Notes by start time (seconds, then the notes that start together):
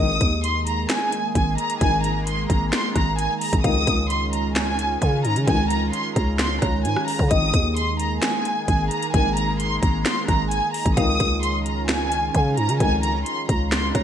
Already playing: G#1 A#1 G#2 D#3 G#3 A#3 G#4 D#5
0.00 D#6
0.21 D#2, kick, closed hi-hat
0.44 C6, closed hi-hat
0.67 A#5, closed hi-hat
0.90 G#5, finger snap, snare, closed hi-hat
1.12 closed hi-hat
1.35 G#1 G#5, kick, closed hi-hat
1.58 A#5, closed hi-hat
1.70 closed hi-hat
1.81 G#1 A#1 G#2 D#3 G#5, kick, closed hi-hat
2.04 A#5, closed hi-hat
2.27 C6, closed hi-hat
2.49 G#1 A#5, kick, closed hi-hat
2.73 C6, finger snap, snare, closed hi-hat
2.96 G#1 A#5, kick, cross-stick, closed hi-hat
3.18 G#5, closed hi-hat
3.41 A#5, closed hi-hat, open hi-hat
3.53 G#1, kick, closed hi-hat
3.64 G#1 C#2 F2 D#3 G#3 C#4 F4 F5 D#6, kick, closed hi-hat
3.87 C#2, kick, closed hi-hat
4.10 C6, closed hi-hat
4.33 A#5, closed hi-hat
4.56 G#5, finger snap, snare, closed hi-hat
4.79 closed hi-hat
5.01 C#3 G#5, kick, closed hi-hat
5.25 G#2 A#5, closed hi-hat
5.36 C#3, closed hi-hat
5.47 G#1 C#2 F2 D#3 G#5, kick, closed hi-hat
5.70 A#5, closed hi-hat
5.93 C6, closed hi-hat
6.16 C#2 A#5, kick, closed hi-hat
6.39 C6, finger snap, snare, closed hi-hat
6.62 C#2 C#5 A#5, kick, cross-stick, closed hi-hat
6.85 G#2 G#5, closed hi-hat
6.96 cross-stick
7.08 A#5, open hi-hat
7.19 C#3, kick
7.31 G#1 A#1 G#2 D#3 G#3 A#3 G#4 D#5 D#6, kick, closed hi-hat
7.54 D#2, kick, closed hi-hat
7.77 C6, closed hi-hat
7.99 A#5, closed hi-hat
8.22 G#5, finger snap, snare, closed hi-hat
8.45 closed hi-hat
8.68 G#1 G#5, kick, closed hi-hat
8.91 A#5, closed hi-hat
9.03 closed hi-hat
9.14 G#1 A#1 G#2 D#3 G#5, kick, closed hi-hat
9.37 A#5, closed hi-hat
9.60 C6, closed hi-hat
9.82 G#1 A#5, kick, closed hi-hat
10.06 C6, finger snap, snare, closed hi-hat
10.28 G#1 A#5, kick, cross-stick, closed hi-hat
10.51 G#5, closed hi-hat
10.74 A#5, closed hi-hat, open hi-hat
10.86 G#1, kick, closed hi-hat
10.97 G#1 C#2 F2 D#3 C#4 F4 F5 D#6, kick, closed hi-hat
11.20 C#2, kick, closed hi-hat
11.43 C6, closed hi-hat
11.65 A#5, closed hi-hat
11.89 G#5, finger snap, snare, closed hi-hat
12.12 closed hi-hat
12.34 C#3 G#5, kick, closed hi-hat
12.57 G#2 A#5, closed hi-hat
12.69 C#3, closed hi-hat
12.80 G#1 C#2 F2 D#3 G#5, kick, closed hi-hat
13.03 A#5, closed hi-hat
13.26 C6, closed hi-hat
13.49 C#2 A#5, kick, closed hi-hat
13.72 C6, finger snap, snare, closed hi-hat
13.95 C#2 C#5 A#5, kick, cross-stick, closed hi-hat